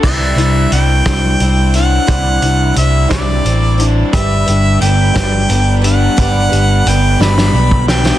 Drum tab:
CC |x-----------|------------|------------|------------|
HH |--x-x-x-x-x-|x-x-x-x-x-x-|x-x-x-x-x-x-|x-x-x-------|
SD |------o-----|------o-----|------o-----|------oo--oo|
BD |o-----o-----|o-----o-----|o-----o-----|o--------o--|